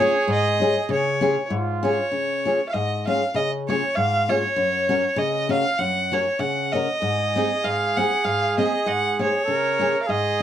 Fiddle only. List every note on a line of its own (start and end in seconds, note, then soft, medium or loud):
0.00 0.26 C#5 medium
0.32 0.87 D#5 medium
0.92 1.48 C#5 medium
1.85 2.64 C#5 medium
2.68 2.75 F5 medium
2.73 3.06 D#5 medium
3.07 3.33 F5 medium
3.36 3.51 D#5 medium
3.68 3.96 C#5 medium
3.95 4.31 F5 medium
4.29 5.19 C#5 medium
5.18 5.51 D#5 medium
5.51 5.80 F5 medium
5.78 6.15 F#5 medium
6.13 6.41 C#5 medium
6.40 6.73 F#5 medium
6.72 7.66 D#5 medium
7.64 7.98 F5 medium
7.96 8.26 F#5 medium
8.24 8.58 F5 medium
8.58 8.89 D#5 medium
8.87 9.20 F#5 medium
9.21 9.98 C#5 medium
10.02 10.11 F5 soft
10.09 10.43 D#5 medium